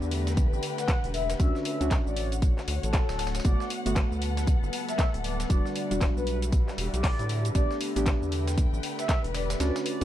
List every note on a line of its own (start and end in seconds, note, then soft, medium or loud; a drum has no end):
0.00 0.46 E2 medium
0.00 4.28 D3 medium
0.00 5.46 D3 medium
0.00 1.37 A3 medium
0.00 1.37 B3 loud
0.00 1.37 D4 medium
0.00 1.37 G4 medium
0.00 1.37 G4 loud
0.00 1.36 B4 medium
0.00 2.23 B4 medium
0.00 1.36 E5 medium
0.00 shaker soft
0.11 1.40 G5 medium
0.11 open hi-hat loud
0.11 tambourine medium
0.27 snare medium
0.27 closed hi-hat medium
0.27 shaker medium
0.37 kick loud
0.37 closed hi-hat medium
0.37 tambourine medium
0.37 shaker medium
0.53 0.60 A1 loud
0.53 shaker soft
0.63 open hi-hat loud
0.63 tambourine medium
0.78 0.98 F#5 loud
0.78 snare soft
0.78 closed hi-hat soft
0.78 shaker medium
0.88 kick loud
0.88 snare loud
0.88 clap loud
0.88 closed hi-hat medium
0.88 tambourine medium
0.88 shaker medium
1.04 1.35 E1 medium
1.04 closed hi-hat soft
1.04 shaker soft
1.14 1.31 E5 medium
1.14 open hi-hat medium
1.14 tambourine medium
1.30 snare medium
1.30 closed hi-hat soft
1.30 shaker medium
1.39 1.51 D2 loud
1.39 5.46 A3 medium
1.39 1.77 C#4 medium
1.39 1.77 D4 medium
1.39 3.43 F#4 medium
1.39 1.77 F#4 medium
1.39 3.43 C#5 medium
1.39 1.56 E5 medium
1.39 5.46 F#5 medium
1.39 kick loud
1.39 closed hi-hat medium
1.39 tambourine medium
1.39 shaker medium
1.55 snare soft
1.55 shaker soft
1.65 1.87 E5 medium
1.65 open hi-hat loud
1.65 tambourine medium
1.76 7.29 F#5 medium
1.80 1.98 D2 loud
1.80 3.42 C#4 loud
1.80 3.42 D4 medium
1.80 3.43 F#4 loud
1.80 closed hi-hat medium
1.80 shaker medium
1.91 kick loud
1.91 snare loud
1.91 clap loud
1.91 closed hi-hat medium
1.91 tambourine medium
1.91 shaker medium
2.06 2.51 A1 medium
2.06 2.27 D5 loud
2.06 shaker soft
2.16 open hi-hat loud
2.16 tambourine medium
2.21 4.28 C#5 medium
2.32 closed hi-hat soft
2.32 shaker medium
2.42 kick loud
2.42 closed hi-hat medium
2.42 tambourine medium
2.42 shaker medium
2.58 snare soft
2.58 clap soft
2.58 shaker soft
2.68 2.79 D2 loud
2.68 open hi-hat loud
2.68 tambourine medium
2.83 3.01 A1 medium
2.83 3.37 A4 loud
2.83 closed hi-hat soft
2.83 shaker medium
2.93 kick loud
2.93 snare loud
2.93 clap loud
2.93 closed hi-hat medium
2.93 tambourine medium
2.93 shaker medium
3.09 3.40 D1 loud
3.09 snare loud
3.09 tambourine medium
3.09 shaker soft
3.19 snare medium
3.19 open hi-hat loud
3.19 tambourine medium
3.27 snare medium
3.27 tambourine medium
3.35 snare medium
3.35 closed hi-hat soft
3.35 tambourine medium
3.35 shaker medium
3.40 snare medium
3.40 tambourine medium
3.44 3.56 G1 loud
3.44 5.48 G3 medium
3.44 3.82 A3 medium
3.44 3.82 B3 medium
3.44 6.23 B3 medium
3.44 3.82 F#4 medium
3.44 5.48 B4 medium
3.44 3.67 D5 loud
3.44 kick loud
3.44 closed hi-hat medium
3.44 tambourine medium
3.44 shaker medium
3.60 snare soft
3.60 shaker soft
3.70 open hi-hat loud
3.70 tambourine medium
3.86 4.03 G1 loud
3.86 5.47 A3 loud
3.86 5.47 B3 medium
3.86 5.48 F#4 loud
3.86 closed hi-hat soft
3.86 closed hi-hat medium
3.86 shaker medium
3.95 6.23 A4 medium
3.95 kick loud
3.95 snare loud
3.95 clap loud
3.95 closed hi-hat medium
3.95 tambourine medium
3.95 shaker medium
4.12 4.56 D2 medium
4.12 shaker soft
4.22 open hi-hat loud
4.22 tambourine medium
4.37 snare medium
4.37 closed hi-hat medium
4.37 shaker medium
4.47 kick loud
4.47 closed hi-hat medium
4.47 tambourine medium
4.47 shaker medium
4.63 4.70 G1 loud
4.63 shaker soft
4.73 open hi-hat loud
4.73 tambourine medium
4.89 5.09 E5 loud
4.89 snare soft
4.89 closed hi-hat medium
4.89 shaker medium
4.99 kick loud
4.99 snare loud
4.99 clap loud
4.99 closed hi-hat medium
4.99 tambourine medium
4.99 shaker medium
5.14 5.46 D1 medium
5.14 closed hi-hat soft
5.14 shaker soft
5.24 5.41 D5 medium
5.24 open hi-hat medium
5.24 tambourine medium
5.40 snare medium
5.40 closed hi-hat medium
5.40 shaker medium
5.50 5.61 E1 loud
5.50 10.04 D3 medium
5.50 5.87 G3 medium
5.50 7.28 G3 medium
5.50 9.56 D4 medium
5.50 5.87 D4 medium
5.50 7.28 F#4 medium
5.50 5.88 F#4 medium
5.50 9.56 B4 medium
5.50 5.66 D5 medium
5.50 9.56 E5 medium
5.50 kick loud
5.50 closed hi-hat medium
5.50 tambourine medium
5.50 shaker medium
5.66 snare soft
5.66 shaker soft
5.76 5.98 D5 medium
5.76 open hi-hat loud
5.76 tambourine medium
5.91 6.08 E1 loud
5.91 7.28 G3 loud
5.91 7.28 D4 medium
5.91 7.28 F#4 loud
5.91 closed hi-hat medium
5.91 shaker medium
6.01 kick loud
6.01 snare loud
6.01 clap loud
6.01 closed hi-hat medium
6.01 tambourine medium
6.01 shaker medium
6.17 6.61 B1 medium
6.17 6.37 B4 loud
6.17 shaker soft
6.27 open hi-hat medium
6.27 tambourine medium
6.31 8.24 G3 loud
6.42 closed hi-hat medium
6.42 shaker medium
6.52 kick loud
6.52 closed hi-hat medium
6.52 tambourine medium
6.52 shaker medium
6.68 snare soft
6.68 clap soft
6.68 shaker soft
6.78 6.89 E1 loud
6.78 open hi-hat loud
6.78 tambourine medium
6.94 7.11 B1 medium
6.94 7.47 D5 loud
6.94 closed hi-hat medium
6.94 shaker medium
7.04 kick loud
7.04 snare loud
7.04 clap loud
7.04 closed hi-hat medium
7.04 open hi-hat medium
7.04 shaker medium
7.19 7.51 A2 loud
7.19 closed hi-hat soft
7.19 shaker soft
7.29 10.04 A3 medium
7.29 9.58 G4 medium
7.29 open hi-hat medium
7.29 tambourine medium
7.45 closed hi-hat soft
7.45 shaker medium
7.55 7.66 A1 loud
7.55 7.92 B3 medium
7.55 7.92 D4 medium
7.55 7.93 G4 medium
7.55 7.77 D5 loud
7.55 kick loud
7.55 closed hi-hat medium
7.55 tambourine medium
7.55 shaker medium
7.71 snare soft
7.71 shaker soft
7.81 open hi-hat loud
7.81 tambourine medium
7.96 8.13 A1 loud
7.96 9.57 B3 loud
7.96 9.58 D4 medium
7.96 9.58 G4 loud
7.96 closed hi-hat soft
7.96 closed hi-hat medium
7.96 shaker medium
8.06 kick loud
8.06 snare loud
8.06 clap loud
8.06 closed hi-hat medium
8.06 tambourine medium
8.06 shaker medium
8.22 8.66 E2 medium
8.22 10.04 B4 medium
8.22 9.60 G5 medium
8.22 shaker soft
8.32 open hi-hat medium
8.32 tambourine medium
8.47 snare medium
8.47 closed hi-hat medium
8.47 shaker medium
8.58 kick loud
8.58 closed hi-hat medium
8.58 tambourine medium
8.58 shaker medium
8.73 8.80 A1 loud
8.73 shaker soft
8.83 open hi-hat loud
8.83 tambourine medium
8.99 9.19 E5 loud
8.99 snare soft
8.99 closed hi-hat medium
8.99 shaker medium
9.09 kick loud
9.09 snare loud
9.09 clap loud
9.09 closed hi-hat medium
9.09 tambourine medium
9.09 shaker medium
9.24 9.56 E1 medium
9.24 closed hi-hat soft
9.24 shaker soft
9.34 9.51 D5 medium
9.34 snare loud
9.34 open hi-hat medium
9.34 tambourine medium
9.50 snare loud
9.50 closed hi-hat medium
9.50 tambourine medium
9.50 shaker medium
9.60 9.72 D2 loud
9.60 10.04 D3 medium
9.60 9.98 C#4 medium
9.60 9.98 D4 medium
9.60 10.04 F#4 medium
9.60 9.98 F#4 medium
9.60 10.04 C#5 medium
9.60 9.77 D5 medium
9.60 10.04 F#5 medium
9.60 snare loud
9.60 closed hi-hat medium
9.60 tambourine medium
9.60 shaker medium
9.76 snare loud
9.76 tambourine medium
9.76 shaker soft
9.86 10.04 D5 medium
9.86 open hi-hat loud
9.86 tambourine medium
10.01 10.04 C#4 loud